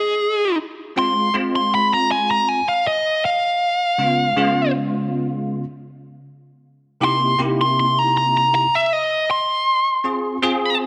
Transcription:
0.00 0.57 G#4 loud
0.96 1.28 G#3 medium
0.96 1.28 C4 medium
0.96 1.28 F4 medium
0.96 1.34 C6 loud
1.34 2.60 G#3 medium
1.34 2.60 C4 medium
1.34 2.60 F4 medium
1.56 1.72 C6 loud
1.75 1.92 B5 medium
1.93 2.10 A#5 medium
2.11 2.29 G#5 medium
2.31 2.49 A#5 medium
2.49 2.67 G#5 medium
2.69 2.85 F5 loud
2.87 3.23 D#5 medium
3.25 4.71 F5 medium
3.98 4.30 C#3 medium
3.98 4.30 G#3 medium
3.98 4.30 B3 medium
3.98 4.30 F4 medium
4.36 5.62 C#3 loud
4.36 5.63 G#3 medium
4.36 5.63 B3 medium
4.36 5.63 F4 loud
7.01 7.33 C3 medium
7.01 7.33 A#3 medium
7.01 7.33 D#4 medium
7.01 7.33 E4 medium
7.01 7.33 G4 medium
7.01 7.40 C6 loud
7.38 8.65 C3 medium
7.38 8.65 A#3 medium
7.38 8.65 D#4 medium
7.38 8.65 E4 medium
7.38 8.65 G4 medium
7.61 7.78 C6 medium
7.80 7.99 C6 medium
7.99 8.15 A#5 medium
8.17 8.35 A#5 medium
8.37 8.54 A#5 medium
8.55 8.73 A#5 medium
8.75 8.93 E5 medium
8.93 9.29 D#5 medium
9.31 10.77 C6 medium
10.04 10.36 C4 medium
10.04 10.36 F4 medium
10.04 10.36 G#4 medium
10.42 10.87 C4 loud
10.42 10.87 F4 medium
10.42 10.87 G#4 loud

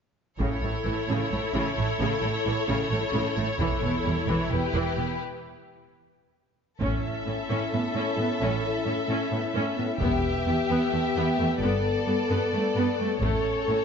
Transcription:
0.38 0.46 A1 soft
0.38 0.48 A2 soft
0.38 0.61 C#3 soft
0.38 3.56 E4 soft
0.38 4.48 A4 soft
0.38 4.48 C#5 soft
0.38 taiko soft
0.62 0.70 A1 soft
0.62 0.71 A2 soft
0.62 0.70 A3 soft
0.85 0.93 A1 soft
0.85 0.94 A2 soft
0.85 0.93 E3 soft
1.08 1.16 A1 soft
1.08 1.17 A2 soft
1.08 1.30 C#3 soft
1.31 1.39 A1 soft
1.31 1.39 A2 soft
1.31 1.39 A3 soft
1.54 1.62 A1 soft
1.54 1.62 A2 soft
1.54 1.75 C#3 soft
1.77 1.85 A1 soft
1.77 1.86 A2 soft
1.77 1.85 A3 soft
1.99 2.07 A1 soft
1.99 2.08 A2 soft
1.99 2.21 C#3 soft
2.22 2.31 A1 soft
2.22 2.31 A2 soft
2.22 2.30 A3 soft
2.46 2.54 A1 soft
2.46 2.54 A2 soft
2.46 2.54 E3 soft
2.68 2.77 A1 soft
2.68 2.77 A2 soft
2.68 2.90 C#3 soft
2.90 2.98 A1 soft
2.90 3.00 A2 soft
2.90 2.98 A3 soft
3.13 3.21 A1 soft
3.13 3.22 A2 soft
3.13 3.35 C#3 soft
3.36 3.44 A1 soft
3.36 3.46 A2 soft
3.36 3.45 A3 soft
3.59 3.68 E1 soft
3.59 3.68 E2 soft
3.59 3.81 E3 soft
3.59 5.17 E4 soft
3.59 taiko soft
3.82 3.90 E1 soft
3.82 3.90 E2 soft
3.82 3.91 B3 soft
4.05 4.14 E1 soft
4.05 4.14 E2 soft
4.05 4.13 G3 soft
4.28 4.36 E1 soft
4.28 4.36 E2 soft
4.28 4.50 E3 soft
4.28 taiko soft
4.51 4.60 E1 soft
4.51 4.59 E2 soft
4.51 4.60 B3 soft
4.51 5.20 G4 soft
4.51 5.20 B4 soft
4.75 4.83 E1 soft
4.75 4.83 E2 soft
4.75 4.96 E3 soft
4.97 5.06 E1 soft
4.97 5.05 E2 soft
4.97 5.06 B3 soft
6.81 7.02 A1 soft
6.81 6.89 A2 soft
6.81 9.98 C#4 soft
6.81 7.02 C#4 soft
6.81 9.98 E4 soft
6.81 9.98 A4 soft
6.81 9.98 E5 soft
6.81 taiko soft
7.27 7.35 A2 soft
7.27 7.35 C#4 soft
7.49 7.57 A2 soft
7.49 7.71 C#4 soft
7.73 7.81 A2 soft
7.73 7.81 B3 soft
7.94 8.02 A2 soft
7.94 8.17 C#4 soft
8.18 8.26 A2 soft
8.18 8.27 B3 soft
8.41 8.63 A1 soft
8.41 8.49 A2 soft
8.41 8.63 C#4 soft
8.86 8.94 A2 soft
8.86 8.95 C#4 soft
9.08 9.16 A2 soft
9.08 9.31 C#4 soft
9.31 9.39 A2 soft
9.31 9.40 B3 soft
9.55 9.63 A2 soft
9.55 9.76 C#4 soft
9.78 9.86 A2 soft
9.78 9.86 B3 soft
10.01 10.23 E1 soft
10.01 10.09 E2 soft
10.01 10.22 B3 soft
10.01 13.18 B3 soft
10.01 11.58 G4 soft
10.01 11.58 E5 soft
10.01 taiko soft
10.46 10.54 E2 soft
10.46 10.55 B3 soft
10.69 10.77 E2 soft
10.69 10.91 B3 soft
10.92 11.00 E2 soft
10.92 11.00 A3 soft
11.15 11.23 E2 medium
11.15 11.37 B3 soft
11.38 11.47 E2 soft
11.38 11.46 A3 soft
11.61 11.82 G1 soft
11.61 11.69 G2 soft
11.61 11.83 B3 medium
11.61 13.18 A4 soft
11.61 13.20 A4 soft
11.61 13.19 D5 soft
12.07 12.15 G2 soft
12.07 12.16 B3 soft
12.29 12.38 G2 soft
12.29 12.51 B3 medium
12.53 12.61 G2 soft
12.53 12.62 A3 soft
12.76 12.84 G2 medium
12.76 12.97 B3 medium
12.99 13.07 G2 soft
12.99 13.07 A3 soft
13.21 13.43 A1 soft
13.21 13.29 A2 medium
13.21 13.43 A3 soft
13.21 13.85 C#4 soft
13.21 13.85 A4 soft
13.21 13.85 C#5 soft
13.21 taiko soft
13.67 13.75 A2 soft
13.67 13.77 A3 soft

